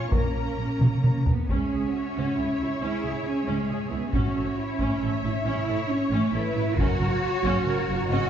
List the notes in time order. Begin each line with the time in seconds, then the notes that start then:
Already playing: C#4 F4 C#5 C#6
0.09 A#1 A#2 A#3 C#4 A#4 A#5, taiko
0.14 C#4 A#4
0.34 A#1
0.57 A#1
0.80 A#1, taiko mid
1.04 A#1, taiko mid
1.26 A#1 B3, taiko low
1.48 C#2 C#4 G#4 C#5 E5, taiko
1.72 C#2 G#4
1.92 F#4
2.16 C#2 C#4
2.36 C#2 E4 G#4
2.60 C#2 E4
2.80 C#2 C#4 E4 G#4
3.03 C#2 G#4
3.25 C#4 G#4
3.47 C#2 G#3 C#4
3.70 C#2 G#4
3.91 C#2 B3 E4
4.11 A1 C#4 F#4 C#5 E5, taiko
4.35 A1 A4
4.57 E4
4.79 A1 C#4, taiko
5.00 A1 A4 E5
5.23 A1 E4
5.45 A1 C#4 E4 C#5
5.67 A1 A4
5.90 C#4
6.11 A1 A3 C#4
6.33 A1 E4 A4 B4
6.55 A1 E4
6.77 F#1 C#4 F#4 A#4 C#5 F#5, taiko
7.00 F#1 A#4
7.23 C#5
7.44 F#1 C#4, taiko
7.66 F#1 A#4
7.89 F#1 F#4
8.09 F#1 C#4 F#4 D#5